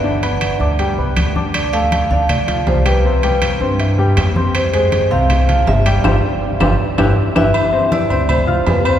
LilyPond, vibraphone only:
\new Staff \with { instrumentName = "Vibraphone" } { \time 4/4 \key c \major \tempo 4 = 160 d''2.~ d''8 r8 | d''8 f''4 f''8 d''4 c''8 b'8~ | b'4 r2. | c''8 c''4 f''4. e''8 d''8~ |
d''2.~ d''8 e''8~ | e''4 d''8 d''8 c''4 b'8 c''8 | }